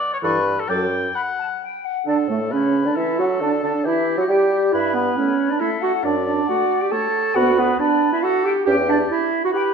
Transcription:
0.00 0.12 D5 medium
0.13 0.18 C#5 medium
0.22 0.62 G2 medium
0.22 0.39 E3 soft
0.22 0.39 A4 soft
0.22 0.61 B4 medium
0.22 0.45 C#6 soft
0.60 0.70 A4 medium
0.69 1.07 F#2 soft
0.69 0.85 F#3 soft
0.69 0.85 A4 soft
0.69 1.17 G5 medium
0.69 0.91 D6 soft
1.15 1.61 F#5 soft
1.15 1.21 B5 medium
1.38 1.44 A5 soft
1.62 1.86 G5 soft
1.84 2.07 F#5 soft
2.06 2.30 D3 soft
2.06 2.17 D4 medium
2.06 2.28 D4 medium
2.06 2.53 A4 soft
2.06 2.14 D5 soft
2.29 2.53 A2 soft
2.29 2.54 A3 soft
2.29 2.40 A3 soft
2.29 2.36 A4 soft
2.51 2.86 C#3 soft
2.51 2.88 C#4 medium
2.51 2.87 C#4 soft
2.51 2.97 B4 soft
2.51 2.88 C#5 soft
2.85 2.96 D3 soft
2.85 2.96 D4 soft
2.85 2.98 D4 soft
2.85 2.99 D5 soft
2.96 3.18 E3 medium
2.96 3.20 E4 medium
2.96 3.07 E4 soft
2.96 3.86 A4 soft
2.96 3.18 E5 soft
3.18 3.43 F#3 soft
3.18 3.28 F#4 soft
3.18 3.41 F#4 medium
3.18 3.25 F#5 soft
3.41 3.62 D3 soft
3.41 3.51 D4 medium
3.41 3.48 D5 soft
3.62 3.86 D3 soft
3.62 3.73 D4 medium
3.62 3.88 D4 soft
3.62 3.68 D5 soft
3.85 4.17 E3 soft
3.85 4.20 E4 medium
3.85 4.18 E4 soft
3.85 4.73 G4 soft
3.85 4.18 E5 soft
4.18 4.23 F#3 soft
4.18 4.28 F#4 medium
4.18 4.29 F#4 soft
4.18 4.23 F#5 soft
4.28 4.72 G3 medium
4.28 4.74 G4 medium
4.28 4.73 G4 medium
4.28 4.53 G5 soft
4.73 5.10 G2 soft
4.73 4.96 E4 medium
4.73 5.62 B4 medium
4.73 4.94 E5 soft
4.94 5.19 B3 medium
4.94 5.17 B4 soft
5.17 5.33 A3 soft
5.17 5.50 C#4 medium
5.17 5.51 C#5 soft
5.49 5.56 D4 medium
5.49 5.61 D5 soft
5.60 5.77 A3 soft
5.60 5.70 E4 medium
5.60 6.06 A4 soft
5.60 5.82 E5 medium
5.81 5.92 F#4 medium
5.81 6.04 F#5 medium
6.03 6.41 F#2 soft
6.03 6.15 D4 medium
6.03 6.24 D5 medium
6.03 6.92 D5 medium
6.25 6.48 D4 medium
6.25 6.31 D5 medium
6.46 6.65 A3 soft
6.46 6.83 F#4 medium
6.46 6.81 F#5 medium
6.80 6.93 G4 medium
6.80 6.92 G5 medium
6.91 7.08 A3 soft
6.91 7.37 A4 medium
6.91 7.35 C#5 soft
6.91 7.35 A5 medium
7.34 7.72 D2 medium
7.34 7.51 B3 soft
7.34 7.60 F#4 medium
7.34 7.78 B4 medium
7.34 7.55 F#5 medium
7.56 7.79 B3 medium
7.56 7.80 B4 medium
7.79 8.12 D4 medium
7.79 8.22 B4 medium
7.79 8.11 D5 medium
8.12 8.25 E4 medium
8.12 8.24 E5 medium
8.22 8.46 F#4 medium
8.22 8.54 A4 soft
8.22 8.44 F#5 medium
8.45 8.65 G4 medium
8.45 8.51 G5 medium
8.66 9.03 E2 medium
8.66 8.82 C#4 medium
8.66 8.76 G4 medium
8.66 9.25 G4 medium
8.66 8.91 G5 medium
8.89 8.99 D4 medium
8.89 9.13 D5 medium
9.11 9.43 E4 medium
9.11 9.44 E5 medium
9.44 9.49 F#4 medium
9.44 9.49 F#5 medium
9.53 9.74 G4 medium
9.53 9.74 B4 medium
9.53 9.61 G5 medium

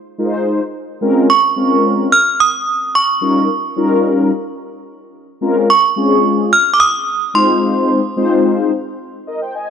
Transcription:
0.18 0.60 G#3 medium
0.18 0.60 D#4 medium
0.18 0.60 F4 medium
0.18 0.26 A#4 medium
0.25 0.64 C5 loud
1.01 1.28 G#3 medium
1.01 1.28 C4 medium
1.01 1.28 C#4 medium
1.01 1.28 F4 medium
1.01 1.29 A#4 medium
1.30 2.08 C#6 medium
1.56 2.11 G#3 medium
1.56 2.11 C4 medium
1.56 2.11 C#4 medium
1.56 2.11 F4 medium
1.56 2.11 A#4 medium
2.12 2.40 F6 loud
2.40 2.91 D#6 loud
2.95 4.00 C#6 medium
3.21 3.48 G3 medium
3.21 3.48 C#4 medium
3.21 3.48 D#4 medium
3.21 3.49 F4 medium
3.21 3.49 A#4 medium
3.76 4.31 G3 medium
3.76 4.31 C#4 medium
3.76 4.31 D#4 medium
3.76 4.31 F4 medium
3.76 4.31 A#4 loud
5.41 5.68 G#3 medium
5.41 5.68 C4 medium
5.41 5.69 C#4 medium
5.41 5.69 F4 medium
5.41 5.69 A#4 medium
5.70 6.48 C#6 loud
5.96 6.51 G#3 medium
5.96 6.51 C4 medium
5.96 6.51 C#4 medium
5.96 6.51 F4 medium
5.96 6.51 G#4 medium
6.53 6.74 F6 loud
6.74 6.79 D6 medium
6.80 7.31 D#6 loud
7.34 8.01 G#3 medium
7.34 8.01 C4 medium
7.34 8.01 D#4 medium
7.34 8.01 F4 medium
7.34 8.01 C5 medium
7.34 8.41 C6 medium
8.16 8.71 G#3 medium
8.16 8.71 C4 medium
8.16 8.71 D#4 medium
8.16 8.71 F4 medium
8.16 8.71 C5 loud
9.27 9.41 A#4 medium
9.27 9.41 D#5 medium
9.42 9.54 C5 medium
9.42 9.54 G5 medium
9.54 9.68 D#5 medium
9.54 9.68 G#5 medium

